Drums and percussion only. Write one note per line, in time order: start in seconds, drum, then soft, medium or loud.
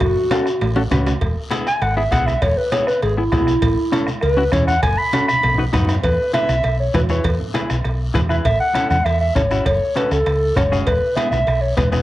0.00 bombo low medium
0.00 bombo rim medium
0.00 cowbell medium
0.00 long guiro medium
0.16 high conga soft
0.16 low conga medium
0.31 bombo rim medium
0.31 cowbell medium
0.31 high conga medium
0.31 high timbale loud
0.31 short guiro medium
0.46 bombo rim medium
0.46 short guiro medium
0.61 bombo rim medium
0.61 cowbell medium
0.61 low timbale medium
0.61 long guiro medium
0.76 low timbale medium
0.91 bombo low medium
0.91 bombo rim medium
0.91 cowbell medium
0.91 high conga medium
0.91 low conga medium
0.91 low timbale medium
0.91 short guiro medium
1.06 bombo rim medium
1.06 low timbale medium
1.06 short guiro medium
1.21 bombo low medium
1.21 bombo rim medium
1.21 cowbell loud
1.21 long guiro medium
1.36 high conga soft
1.51 bombo rim medium
1.51 cowbell medium
1.51 high conga medium
1.51 short guiro medium
1.67 bombo rim medium
1.67 short guiro medium
1.82 bombo rim medium
1.82 cowbell medium
1.82 long guiro medium
1.97 high conga soft
2.12 bombo low medium
2.12 bombo rim medium
2.12 cowbell medium
2.12 high conga medium
2.12 short guiro medium
2.27 bombo rim medium
2.27 high conga medium
2.27 short guiro medium
2.42 bombo low medium
2.42 bombo rim medium
2.42 cowbell loud
2.42 long guiro medium
2.57 high conga soft
2.72 bombo rim medium
2.72 cowbell medium
2.72 high conga medium
2.72 short guiro medium
2.87 bombo rim medium
2.87 short guiro medium
3.02 bombo rim medium
3.02 cowbell medium
3.02 long guiro medium
3.32 bombo low medium
3.32 bombo rim loud
3.32 cowbell medium
3.32 high conga medium
3.32 low conga medium
3.32 low timbale medium
3.32 short guiro medium
3.47 bombo rim medium
3.47 short guiro medium
3.62 bombo low medium
3.62 bombo rim medium
3.62 cowbell loud
3.62 long guiro medium
3.78 high conga soft
3.92 bombo rim medium
3.92 cowbell medium
3.92 high conga loud
3.92 short guiro medium
4.07 bombo rim medium
4.07 high conga medium
4.07 short guiro medium
4.21 bombo rim medium
4.21 cowbell medium
4.21 long guiro medium
4.38 high conga soft
4.52 bombo low medium
4.52 bombo rim loud
4.52 cowbell medium
4.52 high conga medium
4.52 short guiro medium
4.68 bombo rim medium
4.68 short guiro medium
4.83 bombo low medium
4.83 bombo rim medium
4.83 cowbell loud
4.83 long guiro medium
4.98 high conga soft
5.13 bombo rim medium
5.13 cowbell medium
5.13 high conga loud
5.13 short guiro medium
5.28 bombo rim medium
5.28 short guiro medium
5.33 high conga medium
5.43 bombo rim medium
5.43 cowbell medium
5.43 low conga medium
5.43 long guiro medium
5.54 low conga medium
5.73 bombo low medium
5.73 bombo rim medium
5.73 cowbell medium
5.73 low conga loud
5.73 low timbale medium
5.73 short guiro medium
5.85 low conga medium
5.85 short guiro medium
5.89 bombo rim medium
5.95 low conga medium
6.04 bombo low medium
6.04 bombo rim medium
6.04 cowbell loud
6.04 long guiro medium
6.20 high conga soft
6.34 bombo rim medium
6.34 cowbell medium
6.34 high conga loud
6.34 short guiro medium
6.49 bombo rim medium
6.49 short guiro medium
6.63 bombo rim medium
6.63 cowbell medium
6.63 long guiro medium
6.80 high conga soft
6.94 bombo low medium
6.94 bombo rim medium
6.94 cowbell medium
6.94 high conga medium
6.94 low timbale medium
6.94 short guiro medium
7.09 bombo rim medium
7.09 short guiro medium
7.24 bombo low medium
7.24 bombo rim medium
7.24 cowbell medium
7.24 long guiro medium
7.40 high conga soft
7.40 low conga medium
7.55 bombo rim medium
7.55 cowbell medium
7.55 high conga loud
7.55 short guiro medium
7.70 bombo rim medium
7.70 short guiro medium
7.84 bombo rim medium
7.84 cowbell medium
7.84 long guiro medium
8.00 high conga soft
8.15 bombo low medium
8.15 bombo rim medium
8.15 cowbell medium
8.15 high conga medium
8.15 low conga medium
8.15 low timbale medium
8.15 short guiro medium
8.29 bombo rim medium
8.29 high conga medium
8.29 short guiro medium
8.45 bombo low medium
8.45 bombo rim medium
8.45 cowbell loud
8.45 long guiro medium
8.61 high conga soft
8.75 bombo rim medium
8.75 cowbell medium
8.75 high conga medium
8.75 short guiro medium
8.90 bombo rim medium
8.90 high conga medium
8.90 short guiro medium
9.06 bombo rim medium
9.06 cowbell medium
9.06 long guiro medium
9.22 high conga soft
9.36 bombo low medium
9.36 bombo rim medium
9.36 cowbell medium
9.36 high conga medium
9.36 low timbale medium
9.36 short guiro medium
9.51 bombo rim medium
9.51 short guiro medium
9.66 bombo low medium
9.66 bombo rim medium
9.66 cowbell loud
9.66 long guiro medium
9.81 high conga soft
9.96 bombo rim medium
9.96 cowbell medium
9.96 high conga medium
9.96 short guiro medium
10.11 bombo rim medium
10.11 short guiro medium
10.26 bombo rim medium
10.26 cowbell medium
10.26 long guiro medium
10.42 high conga soft
10.56 bombo low medium
10.56 bombo rim loud
10.56 cowbell medium
10.56 high conga medium
10.56 low conga medium
10.56 short guiro medium
10.71 bombo rim medium
10.71 high conga medium
10.71 short guiro medium
10.87 bombo low medium
10.87 bombo rim medium
10.87 cowbell medium
10.87 long guiro medium
11.02 high conga soft
11.17 bombo rim medium
11.17 cowbell medium
11.17 high conga medium
11.17 short guiro medium
11.31 bombo rim medium
11.31 high conga medium
11.31 short guiro medium
11.47 bombo rim medium
11.47 cowbell medium
11.47 long guiro medium
11.63 high conga soft
11.77 bombo low medium
11.77 bombo rim medium
11.77 cowbell medium
11.77 high conga medium
11.77 short guiro medium
11.92 bombo rim medium
11.92 high conga medium
11.92 short guiro medium